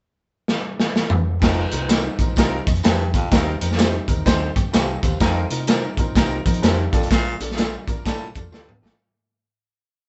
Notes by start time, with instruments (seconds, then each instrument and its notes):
0.48 snare
0.80 snare
0.96 snare
1.10 floor tom
1.42 fingered electric bass F1, baritone saxophone F2, upright piano C4 D#4 F4 A#4, kick, snare, crash, tambourine
1.71 fingered electric bass C2, upright piano C4 D#4 F4 A#4, closed hi-hat, tambourine
1.89 upright piano C4 D#4 F4 A4, clean electric guitar D#4 A#4 C5, snare, closed hi-hat, tambourine
2.19 fingered electric bass A#1, upright piano C4 D#4 F4 A#4, kick, closed hi-hat, tambourine
2.36 fingered electric bass C2, baritone saxophone D#2, upright piano C4 D#4 F4 A#4, kick, snare, closed hi-hat, tambourine
2.67 fingered electric bass F2, upright piano D#5, kick, closed hi-hat, tambourine
2.75 closed hi-hat
2.83 fingered electric bass F2, baritone saxophone G2, clean electric guitar D#4 A#4 C5, upright piano G5, snare, closed hi-hat, tambourine
3.14 fingered electric bass D2, baritone saxophone F2, upright piano F5, kick, closed hi-hat, tambourine
3.31 baritone saxophone D#2, fingered electric bass D#2, upright piano C4 D#4 G4 A#4, kick, snare, closed hi-hat, tambourine
3.61 fingered electric bass F2, upright piano C4 D#4 G4 A#4, closed hi-hat, tambourine
3.71 snare
3.78 upright piano C4 D#4 G4 C5, clean electric guitar D#4 G4 C5, snare, closed hi-hat, tambourine
4.08 fingered electric bass D#2, upright piano C4 D#4 G4 A#4, kick, closed hi-hat, tambourine
4.25 baritone saxophone D2, fingered electric bass D#2, upright piano C4 D#4 G4 C5, kick, snare, closed hi-hat, tambourine
4.56 fingered electric bass G2, upright piano G5, kick, closed hi-hat, tambourine
4.73 fingered electric bass C2, baritone saxophone F2, clean electric guitar D#4 G4 C5, upright piano D#5, snare, closed hi-hat, tambourine
5.03 fingered electric bass D#2, baritone saxophone D#2, upright piano C5, kick, closed hi-hat, tambourine
5.20 fingered electric bass F2, baritone saxophone F2, upright piano C4 D#4 F4 A#4, kick, snare, closed hi-hat, tambourine
5.50 fingered electric bass C3, upright piano C4 D#4 F4 A#4, closed hi-hat, tambourine
5.67 upright piano C4 D#4 F4 A#4, clean electric guitar D#4 A#4 C5, snare, closed hi-hat, tambourine
5.97 fingered electric bass A#2, upright piano C4 D#4 F4 A#4, kick, closed hi-hat, tambourine
6.15 fingered electric bass C2, baritone saxophone D#2, upright piano C4 D#4 F4 A#4, kick, snare, closed hi-hat, tambourine
6.45 fingered electric bass F3, upright piano C4 D#4 F4 A#4, kick, closed hi-hat, tambourine
6.54 closed hi-hat
6.62 fingered electric bass F2, baritone saxophone G2, upright piano C4 D#4 F4 A#4, clean electric guitar D#4 A#4 C5, snare, closed hi-hat, tambourine
6.92 fingered electric bass A#1, baritone saxophone F2, upright piano A#3 D4 F4 A4, kick, closed hi-hat, tambourine
7.03 closed hi-hat
7.10 fingered electric bass A#1, baritone saxophone A#2, kick, snare, closed hi-hat, tambourine
7.40 fingered electric bass A#1, upright piano A#3 D4 F4 A4, closed hi-hat, tambourine
7.51 snare
7.57 upright piano A#3 D4 F4 G4, clean electric guitar F4 A4 D5, snare, closed hi-hat, tambourine
7.88 fingered electric bass A#1, upright piano A#3 D4 F4 A#4, kick, closed hi-hat, tambourine
8.05 baritone saxophone A2, fingered electric bass A#2, upright piano A#3 D4 F4 A4, kick, snare, closed hi-hat, tambourine
8.35 fingered electric bass F2, upright piano A#3 D4 F4 A4 A5, kick, closed hi-hat, tambourine
8.52 fingered electric bass D2, baritone saxophone G2, upright piano A#3 D4 F4 A4 F5, clean electric guitar F4 A4 D5, snare, tambourine
8.69 mid tom
8.82 fingered electric bass A1, baritone saxophone F2, upright piano A#3 D4 F4 A4 D5, snare, tambourine